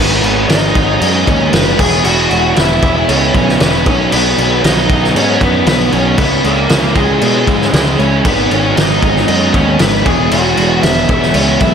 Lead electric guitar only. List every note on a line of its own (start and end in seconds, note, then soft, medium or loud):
0.00 0.45 B3 medium
0.00 0.48 B4 loud
0.48 0.97 D#4 medium
0.48 0.99 D#5 loud
1.00 1.25 D#4 medium
1.00 1.27 D#5 loud
1.26 1.51 C#4 medium
1.26 1.53 C#5 medium
1.53 1.77 B3 medium
1.53 1.80 B4 medium
1.79 2.03 G#4 medium
1.79 2.03 G#5 medium
2.04 2.52 F#4 medium
2.04 2.56 F#5 loud
2.56 2.92 E4 medium
2.56 2.95 E5 medium
2.96 3.07 E4 medium
2.96 3.09 E5 medium
3.08 3.57 C#4 medium
3.08 3.61 C#5 loud
3.62 3.85 B3 medium
3.62 3.87 B4 loud
3.87 4.10 C#4 medium
3.87 4.10 C#5 medium
4.11 4.59 B3 medium
4.11 4.59 B4 loud
4.65 5.13 D#4 medium
4.65 5.12 D#5 medium
5.16 5.40 C#4 medium
5.16 5.42 C#5 loud
5.43 5.66 B3 medium
5.43 5.66 B4 loud
5.67 5.91 B3 medium
5.67 5.92 B4 loud
5.92 6.16 C#4 medium
5.92 6.16 C#5 medium
6.18 6.42 B3 medium
6.18 6.42 B4 loud
6.45 6.93 A#3 medium
6.45 6.96 A#4 medium
6.96 7.20 G#3 medium
6.96 7.22 G#4 medium
7.22 7.96 G#3 medium
7.22 8.02 G#4 medium
7.99 8.23 C#4 medium
7.99 8.25 C#5 medium
8.26 8.50 B3 medium
8.26 8.50 B4 loud
8.51 8.75 C#4 medium
8.51 8.76 C#5 medium
8.76 9.25 D#4 medium
8.76 9.26 D#5 medium
9.27 9.52 D#4 medium
9.27 9.53 D#5 loud
9.54 9.79 C#4 medium
9.54 9.79 C#5 medium
9.80 10.04 B3 medium
9.80 10.07 B4 loud
10.05 10.29 G#4 medium
10.05 10.32 G#5 medium
10.31 10.80 F#4 medium
10.31 10.80 F#5 medium
10.83 11.19 E4 medium
10.83 11.20 E5 medium
11.22 11.34 E4 medium
11.22 11.34 E5 medium
11.34 11.59 C#4 medium
11.34 11.60 C#5 loud
11.60 11.74 E4 medium
11.60 11.74 E5 loud